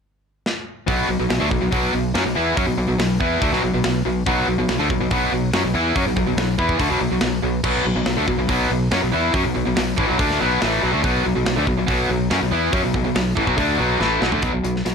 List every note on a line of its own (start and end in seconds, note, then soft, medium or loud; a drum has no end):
0.46 snare medium
0.87 1.08 B1 medium
0.87 1.08 B2 medium
0.87 1.08 F#3 loud
0.87 1.09 B3 loud
0.87 kick loud
0.87 open hi-hat medium
1.09 1.19 B1 medium
1.09 1.18 B2 medium
1.09 1.18 F#3 medium
1.19 1.30 B1 medium
1.19 1.29 B2 medium
1.19 1.29 F#3 medium
1.30 1.40 B1 medium
1.30 1.40 B2 medium
1.30 1.40 F#3 medium
1.30 snare loud
1.30 open hi-hat medium
1.40 1.50 D2 medium
1.40 1.50 D3 medium
1.40 1.50 A3 medium
1.50 1.61 B1 medium
1.50 1.60 B2 medium
1.50 1.60 F#3 medium
1.50 kick medium
1.61 1.72 B1 medium
1.61 1.70 B2 medium
1.61 1.70 F#3 medium
1.71 1.92 B1 loud
1.71 1.92 B2 loud
1.71 1.92 F#3 loud
1.71 1.93 B3 loud
1.71 kick loud
1.71 open hi-hat medium
1.93 2.13 B1 medium
1.93 2.10 B2 medium
1.93 2.11 F#3 medium
2.14 2.24 F#2 medium
2.14 2.25 F#3 medium
2.14 2.25 C#4 medium
2.14 snare loud
2.14 open hi-hat medium
2.25 2.35 B1 medium
2.25 2.35 B2 medium
2.25 2.35 F#3 medium
2.35 2.56 E2 medium
2.35 2.56 E3 medium
2.35 2.56 B3 loud
2.35 2.57 E4 loud
2.57 2.66 F#2 loud
2.57 2.66 F#3 loud
2.57 2.67 C#4 loud
2.57 kick loud
2.57 open hi-hat medium
2.67 2.77 B1 medium
2.67 2.76 B2 medium
2.67 2.77 F#3 medium
2.78 2.88 B1 medium
2.78 2.87 B2 medium
2.78 2.88 F#3 medium
2.88 2.98 B1 medium
2.88 2.98 B2 medium
2.88 2.98 F#3 medium
2.99 3.19 B1 medium
2.99 3.16 B2 medium
2.99 3.17 F#3 medium
2.99 snare loud
2.99 open hi-hat medium
3.20 3.40 E2 medium
3.20 3.41 E3 loud
3.20 3.41 B3 loud
3.20 3.42 E4 loud
3.20 kick medium
3.41 3.52 D2 medium
3.41 3.52 D3 medium
3.41 3.52 A3 loud
3.41 kick loud
3.41 open hi-hat medium
3.52 3.62 B1 medium
3.52 3.62 B2 medium
3.52 3.62 F#3 loud
3.52 snare soft
3.63 3.73 B1 medium
3.63 3.72 B2 medium
3.63 3.73 F#3 medium
3.74 3.84 B1 medium
3.74 3.83 B2 medium
3.74 3.83 F#3 medium
3.84 4.04 B1 medium
3.84 4.01 B2 medium
3.84 4.01 F#3 medium
3.84 snare loud
3.84 open hi-hat medium
4.05 4.25 B1 medium
4.05 4.22 B2 medium
4.05 4.22 F#3 medium
4.26 4.46 B1 loud
4.26 4.46 B2 loud
4.26 4.47 F#3 medium
4.26 4.47 B3 loud
4.26 kick loud
4.26 open hi-hat medium
4.48 4.57 B1 medium
4.48 4.57 B2 medium
4.48 4.57 F#3 medium
4.58 4.68 B1 medium
4.58 4.68 B2 medium
4.58 4.69 F#3 medium
4.69 4.79 B1 medium
4.69 4.79 B2 medium
4.69 4.80 F#3 medium
4.69 snare loud
4.69 open hi-hat medium
4.79 4.89 D2 medium
4.79 4.89 D3 medium
4.79 4.90 A3 loud
4.90 5.00 B1 medium
4.90 4.99 B2 medium
4.90 5.00 F#3 medium
4.90 kick medium
5.00 5.10 B1 medium
5.00 5.10 B2 medium
5.00 5.11 F#3 medium
5.11 5.31 B1 medium
5.11 5.30 B2 medium
5.11 5.31 F#3 loud
5.11 5.32 B3 loud
5.11 kick loud
5.11 open hi-hat medium
5.32 5.52 B1 medium
5.32 5.49 B2 medium
5.32 5.49 F#3 medium
5.53 5.63 F#2 loud
5.53 5.63 F#3 loud
5.53 5.64 C#4 medium
5.53 snare loud
5.53 open hi-hat medium
5.64 5.74 B1 medium
5.64 5.74 B2 medium
5.64 5.74 F#3 medium
5.74 5.94 E2 medium
5.74 5.95 E3 loud
5.74 5.95 B3 loud
5.74 5.95 E4 loud
5.95 6.05 F#2 medium
5.95 6.05 F#3 medium
5.95 6.06 C#4 loud
5.95 kick loud
5.95 open hi-hat medium
6.06 6.16 B1 medium
6.06 6.16 B2 medium
6.06 6.17 F#3 medium
6.17 6.26 B1 medium
6.17 6.27 B2 medium
6.17 6.27 F#3 medium
6.17 kick medium
6.27 6.36 B1 medium
6.27 6.37 B2 medium
6.27 6.38 F#3 medium
6.37 6.57 B1 medium
6.37 6.55 B2 medium
6.37 6.55 F#3 medium
6.37 snare loud
6.37 open hi-hat medium
6.59 6.79 E2 medium
6.59 6.79 E3 loud
6.59 6.80 B3 loud
6.59 6.80 E4 loud
6.59 kick medium
6.69 kick medium
6.79 6.90 D2 medium
6.79 6.90 D3 medium
6.79 6.90 A3 loud
6.79 kick loud
6.79 open hi-hat medium
6.90 7.00 B1 medium
6.90 7.00 B2 medium
6.90 7.01 F#3 medium
7.01 7.11 B1 medium
7.01 7.11 B2 medium
7.01 7.11 F#3 medium
7.11 7.21 B1 medium
7.11 7.21 B2 medium
7.11 7.21 F#3 medium
7.21 7.42 B1 medium
7.21 7.39 B2 medium
7.21 7.39 F#3 medium
7.21 snare loud
7.21 open hi-hat medium
7.43 7.63 B1 medium
7.43 7.60 B2 medium
7.43 7.61 F#3 medium
7.64 7.84 B1 medium
7.64 7.85 B2 medium
7.64 7.85 F#3 loud
7.64 7.85 B3 loud
7.64 kick loud
7.64 crash medium
7.85 7.95 B1 medium
7.85 7.95 B2 medium
7.85 7.95 F#3 medium
7.96 8.05 B1 medium
7.96 8.05 B2 medium
7.96 8.06 F#3 medium
8.06 8.16 B1 medium
8.06 8.16 B2 medium
8.06 8.17 F#3 medium
8.06 snare loud
8.06 open hi-hat medium
8.17 8.27 D2 medium
8.17 8.27 D3 medium
8.17 8.27 A3 loud
8.28 8.37 B1 medium
8.28 8.38 B2 medium
8.28 8.38 F#3 medium
8.28 kick medium
8.38 8.48 B1 medium
8.38 8.48 B2 medium
8.38 8.49 F#3 medium
8.49 8.69 B1 medium
8.49 8.69 B2 loud
8.49 8.70 F#3 loud
8.49 8.70 B3 loud
8.49 kick loud
8.49 open hi-hat medium
8.70 8.90 B1 medium
8.70 8.87 B2 medium
8.70 8.88 F#3 medium
8.91 9.02 F#2 medium
8.91 9.02 F#3 medium
8.91 9.02 C#4 medium
8.91 snare loud
8.91 open hi-hat medium
9.02 9.12 B1 medium
9.02 9.13 B2 medium
9.02 9.13 F#3 medium
9.13 9.33 E2 medium
9.13 9.34 E3 loud
9.13 9.34 B3 loud
9.13 9.34 E4 loud
9.34 9.44 F#2 medium
9.34 9.44 F#3 medium
9.34 9.45 C#4 loud
9.34 kick loud
9.34 open hi-hat medium
9.45 9.55 B1 medium
9.45 9.54 B2 medium
9.45 9.55 F#3 medium
9.56 9.66 B1 medium
9.56 9.65 B2 medium
9.56 9.66 F#3 medium
9.67 9.76 B1 medium
9.67 9.77 B2 medium
9.67 9.77 F#3 medium
9.76 9.97 B1 medium
9.76 9.94 B2 medium
9.76 9.94 F#3 medium
9.76 snare loud
9.76 open hi-hat medium
9.98 10.08 A1 medium
9.98 10.08 A2 loud
9.98 10.08 E3 loud
9.98 kick medium
10.09 10.19 B1 medium
10.09 10.19 B2 medium
10.09 10.19 F#3 loud
10.19 10.39 D2 medium
10.19 10.40 D3 medium
10.19 10.40 A3 loud
10.19 10.41 D4 loud
10.19 kick loud
10.19 open hi-hat medium
10.31 snare soft
10.41 10.61 B1 medium
10.41 10.61 B2 medium
10.41 10.61 F#3 medium
10.41 10.62 B3 medium
10.61 10.82 A1 medium
10.61 10.82 A2 medium
10.61 10.82 E3 medium
10.61 10.82 A3 medium
10.61 snare loud
10.61 open hi-hat medium
10.83 10.93 B1 medium
10.83 10.92 B2 loud
10.83 10.93 F#3 loud
10.92 11.04 D2 medium
10.92 11.03 D3 medium
10.92 11.03 A3 loud
11.03 11.24 B1 loud
11.03 11.24 B2 loud
11.03 11.24 F#3 loud
11.03 11.25 B3 loud
11.03 kick loud
11.03 open hi-hat medium
11.25 11.36 B1 medium
11.25 11.35 B2 medium
11.25 11.35 F#3 medium
11.36 11.46 B1 medium
11.36 11.46 B2 medium
11.36 11.46 F#3 medium
11.46 11.56 B1 medium
11.46 11.57 B2 medium
11.46 11.57 F#3 medium
11.46 snare loud
11.46 open hi-hat medium
11.57 11.66 D2 medium
11.57 11.67 D3 medium
11.57 11.68 A3 loud
11.67 11.77 B1 medium
11.67 11.78 B2 medium
11.67 11.78 F#3 medium
11.67 kick medium
11.78 11.88 B1 medium
11.78 11.88 B2 medium
11.78 11.88 F#3 medium
11.88 12.08 B1 medium
11.88 12.09 B2 medium
11.88 12.09 F#3 loud
11.88 12.10 B3 loud
11.88 kick loud
11.88 open hi-hat medium
12.10 12.29 B1 medium
12.10 12.27 B2 medium
12.10 12.27 F#3 medium
12.31 12.41 F#2 loud
12.31 12.41 F#3 medium
12.31 12.41 C#4 loud
12.31 snare loud
12.31 open hi-hat medium
12.42 12.51 B1 medium
12.42 12.52 B2 medium
12.42 12.52 F#3 medium
12.52 12.72 E2 loud
12.52 12.73 E3 loud
12.52 12.73 B3 medium
12.52 12.74 E4 loud
12.73 12.83 F#2 medium
12.73 12.84 F#3 medium
12.73 12.84 C#4 loud
12.73 kick loud
12.73 open hi-hat medium
12.83 12.94 B1 medium
12.83 12.95 B2 medium
12.83 12.95 F#3 medium
12.94 13.04 B1 medium
12.94 13.05 B2 medium
12.94 13.05 F#3 medium
12.94 kick medium
13.05 13.15 B1 medium
13.05 13.14 B2 medium
13.05 13.15 F#3 medium
13.16 13.36 B1 medium
13.16 13.33 B2 medium
13.16 13.33 F#3 medium
13.16 snare loud
13.16 open hi-hat medium
13.37 13.47 A1 medium
13.37 13.47 A2 loud
13.37 13.48 E3 loud
13.37 kick medium
13.47 13.57 B1 medium
13.47 13.58 B2 medium
13.47 13.58 F#3 loud
13.47 kick medium
13.58 13.78 D2 medium
13.58 13.79 D3 medium
13.58 13.79 A3 loud
13.58 13.80 D4 loud
13.58 kick medium
13.58 open hi-hat medium
13.79 13.99 B1 medium
13.79 14.00 B2 medium
13.79 14.01 F#3 medium
13.79 14.01 B3 medium
14.00 14.20 A1 medium
14.00 14.21 A2 medium
14.00 14.22 E3 loud
14.00 14.22 A3 medium
14.00 snare medium
14.22 14.32 B1 medium
14.22 14.31 B2 medium
14.22 14.32 F#3 loud
14.22 snare medium
14.32 14.42 D2 medium
14.32 14.42 D3 medium
14.32 14.43 A3 loud
14.32 floor tom medium
14.42 14.52 B1 medium
14.42 14.52 B2 medium
14.42 14.52 F#3 loud
14.42 kick loud
14.42 closed hi-hat medium
14.53 14.63 B1 medium
14.53 14.62 B2 medium
14.53 14.63 F#3 medium
14.64 14.84 B1 medium
14.64 14.81 B2 medium
14.64 14.82 F#3 medium
14.64 closed hi-hat medium
14.76 snare soft
14.85 14.95 B1 medium
14.85 14.94 B2 medium
14.85 14.94 F#3 medium
14.85 snare loud
14.85 closed hi-hat medium